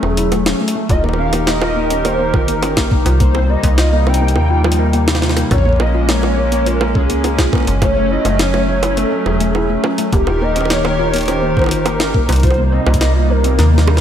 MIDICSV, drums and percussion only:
0, 0, Header, 1, 2, 480
1, 0, Start_track
1, 0, Tempo, 576923
1, 745, Time_signature, 4, 2, 24, 8
1, 11655, End_track
2, 0, Start_track
2, 0, Title_t, "Drums"
2, 24, Note_on_c, 9, 60, 55
2, 107, Note_off_c, 9, 60, 0
2, 144, Note_on_c, 9, 42, 70
2, 227, Note_off_c, 9, 42, 0
2, 264, Note_on_c, 9, 42, 56
2, 264, Note_on_c, 9, 60, 54
2, 348, Note_off_c, 9, 42, 0
2, 348, Note_off_c, 9, 60, 0
2, 384, Note_on_c, 9, 38, 124
2, 467, Note_off_c, 9, 38, 0
2, 564, Note_on_c, 9, 42, 71
2, 647, Note_off_c, 9, 42, 0
2, 744, Note_on_c, 9, 36, 115
2, 744, Note_on_c, 9, 42, 52
2, 827, Note_off_c, 9, 42, 0
2, 828, Note_off_c, 9, 36, 0
2, 864, Note_on_c, 9, 60, 24
2, 904, Note_off_c, 9, 60, 0
2, 904, Note_on_c, 9, 60, 31
2, 944, Note_off_c, 9, 60, 0
2, 944, Note_on_c, 9, 60, 41
2, 1027, Note_off_c, 9, 60, 0
2, 1104, Note_on_c, 9, 42, 66
2, 1104, Note_on_c, 9, 60, 51
2, 1188, Note_off_c, 9, 42, 0
2, 1188, Note_off_c, 9, 60, 0
2, 1224, Note_on_c, 9, 38, 123
2, 1224, Note_on_c, 9, 42, 54
2, 1308, Note_off_c, 9, 38, 0
2, 1308, Note_off_c, 9, 42, 0
2, 1344, Note_on_c, 9, 60, 79
2, 1427, Note_off_c, 9, 60, 0
2, 1584, Note_on_c, 9, 42, 67
2, 1668, Note_off_c, 9, 42, 0
2, 1704, Note_on_c, 9, 42, 51
2, 1704, Note_on_c, 9, 60, 51
2, 1788, Note_off_c, 9, 42, 0
2, 1788, Note_off_c, 9, 60, 0
2, 1944, Note_on_c, 9, 60, 54
2, 1945, Note_on_c, 9, 36, 113
2, 2028, Note_off_c, 9, 36, 0
2, 2028, Note_off_c, 9, 60, 0
2, 2064, Note_on_c, 9, 42, 67
2, 2148, Note_off_c, 9, 42, 0
2, 2184, Note_on_c, 9, 42, 56
2, 2184, Note_on_c, 9, 60, 77
2, 2268, Note_off_c, 9, 42, 0
2, 2268, Note_off_c, 9, 60, 0
2, 2304, Note_on_c, 9, 36, 88
2, 2304, Note_on_c, 9, 38, 126
2, 2387, Note_off_c, 9, 38, 0
2, 2388, Note_off_c, 9, 36, 0
2, 2425, Note_on_c, 9, 36, 127
2, 2508, Note_off_c, 9, 36, 0
2, 2544, Note_on_c, 9, 42, 65
2, 2544, Note_on_c, 9, 60, 50
2, 2627, Note_off_c, 9, 42, 0
2, 2627, Note_off_c, 9, 60, 0
2, 2664, Note_on_c, 9, 42, 51
2, 2665, Note_on_c, 9, 36, 113
2, 2748, Note_off_c, 9, 36, 0
2, 2748, Note_off_c, 9, 42, 0
2, 2784, Note_on_c, 9, 60, 52
2, 2867, Note_off_c, 9, 60, 0
2, 3024, Note_on_c, 9, 42, 65
2, 3025, Note_on_c, 9, 36, 90
2, 3108, Note_off_c, 9, 36, 0
2, 3108, Note_off_c, 9, 42, 0
2, 3144, Note_on_c, 9, 38, 124
2, 3144, Note_on_c, 9, 42, 54
2, 3227, Note_off_c, 9, 38, 0
2, 3227, Note_off_c, 9, 42, 0
2, 3384, Note_on_c, 9, 60, 48
2, 3444, Note_on_c, 9, 42, 66
2, 3467, Note_off_c, 9, 60, 0
2, 3527, Note_off_c, 9, 42, 0
2, 3564, Note_on_c, 9, 42, 52
2, 3624, Note_on_c, 9, 60, 49
2, 3647, Note_off_c, 9, 42, 0
2, 3707, Note_off_c, 9, 60, 0
2, 3864, Note_on_c, 9, 60, 76
2, 3924, Note_on_c, 9, 42, 66
2, 3947, Note_off_c, 9, 60, 0
2, 4008, Note_off_c, 9, 42, 0
2, 4104, Note_on_c, 9, 42, 52
2, 4188, Note_off_c, 9, 42, 0
2, 4224, Note_on_c, 9, 38, 121
2, 4224, Note_on_c, 9, 60, 48
2, 4284, Note_off_c, 9, 38, 0
2, 4284, Note_on_c, 9, 38, 98
2, 4307, Note_off_c, 9, 60, 0
2, 4344, Note_off_c, 9, 38, 0
2, 4344, Note_on_c, 9, 38, 83
2, 4404, Note_off_c, 9, 38, 0
2, 4404, Note_on_c, 9, 38, 68
2, 4465, Note_on_c, 9, 42, 65
2, 4465, Note_on_c, 9, 60, 51
2, 4488, Note_off_c, 9, 38, 0
2, 4548, Note_off_c, 9, 42, 0
2, 4548, Note_off_c, 9, 60, 0
2, 4584, Note_on_c, 9, 42, 49
2, 4584, Note_on_c, 9, 60, 50
2, 4585, Note_on_c, 9, 36, 99
2, 4615, Note_off_c, 9, 36, 0
2, 4615, Note_on_c, 9, 36, 81
2, 4645, Note_off_c, 9, 36, 0
2, 4645, Note_on_c, 9, 36, 71
2, 4668, Note_off_c, 9, 42, 0
2, 4668, Note_off_c, 9, 60, 0
2, 4675, Note_off_c, 9, 36, 0
2, 4675, Note_on_c, 9, 36, 56
2, 4705, Note_off_c, 9, 36, 0
2, 4705, Note_on_c, 9, 36, 46
2, 4735, Note_off_c, 9, 36, 0
2, 4735, Note_on_c, 9, 36, 37
2, 4765, Note_off_c, 9, 36, 0
2, 4765, Note_on_c, 9, 36, 31
2, 4794, Note_off_c, 9, 36, 0
2, 4794, Note_on_c, 9, 36, 24
2, 4825, Note_on_c, 9, 60, 76
2, 4878, Note_off_c, 9, 36, 0
2, 4908, Note_off_c, 9, 60, 0
2, 5064, Note_on_c, 9, 38, 122
2, 5064, Note_on_c, 9, 42, 50
2, 5148, Note_off_c, 9, 38, 0
2, 5148, Note_off_c, 9, 42, 0
2, 5185, Note_on_c, 9, 60, 52
2, 5268, Note_off_c, 9, 60, 0
2, 5425, Note_on_c, 9, 42, 62
2, 5508, Note_off_c, 9, 42, 0
2, 5545, Note_on_c, 9, 42, 50
2, 5628, Note_off_c, 9, 42, 0
2, 5665, Note_on_c, 9, 60, 76
2, 5748, Note_off_c, 9, 60, 0
2, 5785, Note_on_c, 9, 36, 101
2, 5868, Note_off_c, 9, 36, 0
2, 5905, Note_on_c, 9, 42, 61
2, 5988, Note_off_c, 9, 42, 0
2, 6025, Note_on_c, 9, 42, 51
2, 6025, Note_on_c, 9, 60, 53
2, 6108, Note_off_c, 9, 42, 0
2, 6108, Note_off_c, 9, 60, 0
2, 6144, Note_on_c, 9, 36, 84
2, 6145, Note_on_c, 9, 38, 122
2, 6228, Note_off_c, 9, 36, 0
2, 6228, Note_off_c, 9, 38, 0
2, 6265, Note_on_c, 9, 36, 126
2, 6265, Note_on_c, 9, 60, 52
2, 6285, Note_off_c, 9, 60, 0
2, 6285, Note_on_c, 9, 60, 40
2, 6305, Note_off_c, 9, 60, 0
2, 6305, Note_on_c, 9, 60, 35
2, 6325, Note_off_c, 9, 60, 0
2, 6325, Note_on_c, 9, 60, 28
2, 6344, Note_off_c, 9, 60, 0
2, 6344, Note_on_c, 9, 60, 23
2, 6348, Note_off_c, 9, 36, 0
2, 6365, Note_off_c, 9, 60, 0
2, 6365, Note_on_c, 9, 60, 19
2, 6385, Note_on_c, 9, 42, 64
2, 6448, Note_off_c, 9, 60, 0
2, 6468, Note_off_c, 9, 42, 0
2, 6505, Note_on_c, 9, 36, 105
2, 6505, Note_on_c, 9, 42, 52
2, 6505, Note_on_c, 9, 60, 78
2, 6588, Note_off_c, 9, 36, 0
2, 6588, Note_off_c, 9, 42, 0
2, 6588, Note_off_c, 9, 60, 0
2, 6864, Note_on_c, 9, 42, 66
2, 6864, Note_on_c, 9, 60, 52
2, 6947, Note_off_c, 9, 42, 0
2, 6947, Note_off_c, 9, 60, 0
2, 6984, Note_on_c, 9, 38, 114
2, 6984, Note_on_c, 9, 42, 52
2, 7067, Note_off_c, 9, 38, 0
2, 7067, Note_off_c, 9, 42, 0
2, 7104, Note_on_c, 9, 60, 52
2, 7187, Note_off_c, 9, 60, 0
2, 7344, Note_on_c, 9, 42, 62
2, 7344, Note_on_c, 9, 60, 78
2, 7428, Note_off_c, 9, 42, 0
2, 7428, Note_off_c, 9, 60, 0
2, 7464, Note_on_c, 9, 42, 51
2, 7548, Note_off_c, 9, 42, 0
2, 7704, Note_on_c, 9, 60, 53
2, 7788, Note_off_c, 9, 60, 0
2, 7825, Note_on_c, 9, 42, 63
2, 7908, Note_off_c, 9, 42, 0
2, 7945, Note_on_c, 9, 60, 52
2, 8028, Note_off_c, 9, 60, 0
2, 8184, Note_on_c, 9, 60, 82
2, 8268, Note_off_c, 9, 60, 0
2, 8304, Note_on_c, 9, 42, 62
2, 8388, Note_off_c, 9, 42, 0
2, 8424, Note_on_c, 9, 42, 49
2, 8425, Note_on_c, 9, 36, 103
2, 8508, Note_off_c, 9, 36, 0
2, 8508, Note_off_c, 9, 42, 0
2, 8544, Note_on_c, 9, 60, 55
2, 8628, Note_off_c, 9, 60, 0
2, 8785, Note_on_c, 9, 42, 64
2, 8785, Note_on_c, 9, 60, 25
2, 8824, Note_off_c, 9, 60, 0
2, 8824, Note_on_c, 9, 60, 35
2, 8864, Note_off_c, 9, 60, 0
2, 8864, Note_on_c, 9, 60, 44
2, 8868, Note_off_c, 9, 42, 0
2, 8904, Note_on_c, 9, 38, 115
2, 8904, Note_on_c, 9, 42, 54
2, 8948, Note_off_c, 9, 60, 0
2, 8988, Note_off_c, 9, 38, 0
2, 8988, Note_off_c, 9, 42, 0
2, 9025, Note_on_c, 9, 60, 84
2, 9108, Note_off_c, 9, 60, 0
2, 9265, Note_on_c, 9, 42, 60
2, 9285, Note_off_c, 9, 42, 0
2, 9285, Note_on_c, 9, 42, 52
2, 9305, Note_off_c, 9, 42, 0
2, 9305, Note_on_c, 9, 42, 41
2, 9325, Note_off_c, 9, 42, 0
2, 9325, Note_on_c, 9, 42, 35
2, 9345, Note_off_c, 9, 42, 0
2, 9345, Note_on_c, 9, 42, 27
2, 9365, Note_off_c, 9, 42, 0
2, 9365, Note_on_c, 9, 42, 22
2, 9385, Note_off_c, 9, 42, 0
2, 9385, Note_on_c, 9, 42, 52
2, 9385, Note_on_c, 9, 60, 54
2, 9468, Note_off_c, 9, 42, 0
2, 9468, Note_off_c, 9, 60, 0
2, 9625, Note_on_c, 9, 36, 97
2, 9625, Note_on_c, 9, 60, 25
2, 9645, Note_off_c, 9, 60, 0
2, 9645, Note_on_c, 9, 60, 29
2, 9665, Note_off_c, 9, 60, 0
2, 9665, Note_on_c, 9, 60, 34
2, 9684, Note_off_c, 9, 60, 0
2, 9684, Note_on_c, 9, 60, 39
2, 9704, Note_off_c, 9, 60, 0
2, 9704, Note_on_c, 9, 60, 43
2, 9708, Note_off_c, 9, 36, 0
2, 9724, Note_off_c, 9, 60, 0
2, 9724, Note_on_c, 9, 60, 46
2, 9744, Note_on_c, 9, 42, 66
2, 9807, Note_off_c, 9, 60, 0
2, 9827, Note_off_c, 9, 42, 0
2, 9864, Note_on_c, 9, 42, 53
2, 9864, Note_on_c, 9, 60, 83
2, 9947, Note_off_c, 9, 42, 0
2, 9947, Note_off_c, 9, 60, 0
2, 9984, Note_on_c, 9, 38, 116
2, 10067, Note_off_c, 9, 38, 0
2, 10105, Note_on_c, 9, 36, 116
2, 10188, Note_off_c, 9, 36, 0
2, 10224, Note_on_c, 9, 42, 62
2, 10224, Note_on_c, 9, 60, 53
2, 10254, Note_off_c, 9, 42, 0
2, 10254, Note_on_c, 9, 42, 51
2, 10284, Note_off_c, 9, 42, 0
2, 10284, Note_on_c, 9, 42, 42
2, 10307, Note_off_c, 9, 60, 0
2, 10314, Note_off_c, 9, 42, 0
2, 10314, Note_on_c, 9, 42, 35
2, 10344, Note_off_c, 9, 42, 0
2, 10344, Note_on_c, 9, 42, 52
2, 10345, Note_on_c, 9, 36, 105
2, 10374, Note_off_c, 9, 42, 0
2, 10374, Note_on_c, 9, 42, 23
2, 10404, Note_off_c, 9, 42, 0
2, 10404, Note_on_c, 9, 42, 18
2, 10404, Note_on_c, 9, 60, 54
2, 10428, Note_off_c, 9, 36, 0
2, 10434, Note_off_c, 9, 42, 0
2, 10434, Note_on_c, 9, 42, 15
2, 10487, Note_off_c, 9, 60, 0
2, 10517, Note_off_c, 9, 42, 0
2, 10704, Note_on_c, 9, 60, 86
2, 10764, Note_on_c, 9, 36, 83
2, 10764, Note_on_c, 9, 42, 67
2, 10787, Note_off_c, 9, 60, 0
2, 10824, Note_off_c, 9, 42, 0
2, 10824, Note_on_c, 9, 38, 115
2, 10824, Note_on_c, 9, 42, 53
2, 10848, Note_off_c, 9, 36, 0
2, 10907, Note_off_c, 9, 38, 0
2, 10907, Note_off_c, 9, 42, 0
2, 11184, Note_on_c, 9, 42, 64
2, 11268, Note_off_c, 9, 42, 0
2, 11304, Note_on_c, 9, 38, 67
2, 11304, Note_on_c, 9, 42, 53
2, 11388, Note_off_c, 9, 38, 0
2, 11388, Note_off_c, 9, 42, 0
2, 11464, Note_on_c, 9, 38, 77
2, 11544, Note_on_c, 9, 60, 82
2, 11547, Note_off_c, 9, 38, 0
2, 11624, Note_on_c, 9, 38, 84
2, 11627, Note_off_c, 9, 60, 0
2, 11655, Note_off_c, 9, 38, 0
2, 11655, End_track
0, 0, End_of_file